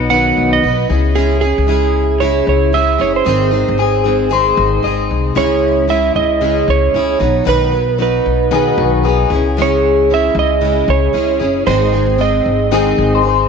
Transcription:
Already playing: upright bass B1
0.10 steel-string acoustic guitar B2 D#3 F#3 B3 D#4 B4, electric slide guitar F#5
0.37 upright bass B1
0.53 electric slide guitar D#5
0.63 upright bass B1, steel-string acoustic guitar F#3 B3 D#4 B4
0.89 upright bass C#2, steel-string acoustic guitar C#4 E4 G#4
1.15 steel-string acoustic guitar C#3 G#3 C#4 E4 G#4, electric slide guitar G#4
1.41 steel-string acoustic guitar C#4 E4 G#4, electric slide guitar G#4
1.58 upright bass C#2
1.67 steel-string acoustic guitar G#3 C#4 E4 G#4
2.20 steel-string acoustic guitar C#3 G#3 C#4 E4 G#4, electric slide guitar C#5
2.47 upright bass C#2, electric slide guitar C#5
2.72 steel-string acoustic guitar G#3 C#4 E4 G#4, electric slide guitar E5
2.98 upright bass F#1, steel-string acoustic guitar C#4 E4 G#4, electric slide guitar C#5
3.16 electric slide guitar C5
3.25 upright bass G#1, steel-string acoustic guitar G#2 D#3 G#3 C4 D#4 G#4
3.51 steel-string acoustic guitar G#3 C4 D#4 G#4
3.69 upright bass G#1
3.78 steel-string acoustic guitar G#3 C4 D#4 G#4, clean electric guitar G#4
4.04 steel-string acoustic guitar G#3 C4 D#4 G#4
4.30 steel-string acoustic guitar G#2 D#3 G#3 C4 D#4 G#4, clean electric guitar C5
4.57 upright bass G#1
4.83 upright bass G#1, steel-string acoustic guitar G#3 C4 D#4 G#4, clean electric guitar D#5
5.11 upright bass C2
5.35 upright bass C#2, steel-string acoustic guitar C#3 G#3 C#4 E4 G#4, electric slide guitar C#5
5.88 steel-string acoustic guitar G#3 C#4 E4 G#4, electric slide guitar E5
6.16 upright bass C#2, electric slide guitar D#5
6.41 steel-string acoustic guitar C#3 G#3 C#4 E4 G#4
6.68 upright bass C#2, electric slide guitar C#5
6.94 upright bass C#2, steel-string acoustic guitar G#3 C#4 E4 G#4
7.20 upright bass B1, steel-string acoustic guitar F#3 B3 D#4 B4
7.44 upright bass B1, steel-string acoustic guitar B2 D#3 F#3 B3 D#4 B4
7.49 electric slide guitar B4
7.72 steel-string acoustic guitar F#3 B3 D#4 B4
7.98 steel-string acoustic guitar F#3 B3 D#4 B4, electric slide guitar B4
8.26 upright bass B1
8.51 steel-string acoustic guitar B2 D#3 F#3 B3 D#4 B4, clean electric guitar G#4
8.78 upright bass B1, clean electric guitar F#4
9.04 steel-string acoustic guitar F#3 B3 D#4 B4, clean electric guitar G#4
9.30 upright bass C#2, steel-string acoustic guitar C#4 E4 G#4
9.57 steel-string acoustic guitar C#3 G#3 C#4 E4 G#4
9.62 electric slide guitar C#5
10.10 steel-string acoustic guitar G#3 C#4 E4 G#4, electric slide guitar E5
10.35 upright bass C#2
10.39 electric slide guitar D#5
10.61 steel-string acoustic guitar C#3 G#3 C#4 E4 G#4
10.88 upright bass C#2, electric slide guitar C#5
11.13 upright bass C#2, steel-string acoustic guitar G#3 C#4 E4 G#4
11.40 upright bass F#1, steel-string acoustic guitar C#4 E4 G#4
11.66 upright bass G#1, steel-string acoustic guitar G#2 D#3 G#3 C4 D#4 G#4, electric slide guitar C5
11.93 steel-string acoustic guitar G#3 C4 D#4 G#4
12.18 steel-string acoustic guitar G#3 C4 D#4 G#4, electric slide guitar D#5
12.46 upright bass G#1
12.71 steel-string acoustic guitar G#2 D#3 G#3 C4 D#4 G#4, clean electric guitar G#4
12.98 upright bass G#1
13.15 clean electric guitar C5
13.22 steel-string acoustic guitar G#3 C4 D#4 G#4, clean electric guitar C5

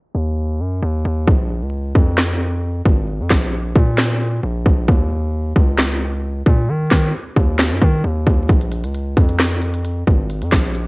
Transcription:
0.15 808-style bass D#2
0.60 808-style bass F#2
0.82 808-style bass D#2
1.05 808-style bass D#2
1.27 808-style bass A#1, kick
1.62 808-style bass C#2
1.95 808-style bass F2, kick
2.17 snare, clap
2.85 808-style bass G#1, kick
3.20 808-style bass F2
3.30 808-style bass A#1, kick, snare, clap
3.76 808-style bass A#2, kick
3.98 snare, clap
4.43 808-style bass A#1
4.66 808-style bass A#1, kick
4.88 808-style bass D#2, kick
5.56 808-style bass C#2, kick
5.78 snare, clap
6.46 808-style bass A#2, kick
6.69 808-style bass D#3
6.91 808-style bass D#3, kick, snare, clap
7.36 808-style bass D#2, kick
7.59 snare, clap
7.71 808-style bass F#2
7.82 808-style bass D#3, kick
8.04 808-style bass D#2
8.27 808-style bass D#2, kick
8.49 808-style bass A#1, kick, closed hi-hat
8.61 closed hi-hat
8.72 closed hi-hat
8.84 808-style bass C#2, closed hi-hat
8.95 closed hi-hat
9.17 808-style bass F2, kick, closed hi-hat
9.29 closed hi-hat
9.39 snare, clap, closed hi-hat
9.52 closed hi-hat
9.62 closed hi-hat
9.74 closed hi-hat
9.85 closed hi-hat
10.07 808-style bass G#1, kick, closed hi-hat
10.30 closed hi-hat
10.42 808-style bass F2, closed hi-hat
10.52 808-style bass A#1, kick, snare, clap, closed hi-hat
10.64 closed hi-hat
10.75 closed hi-hat

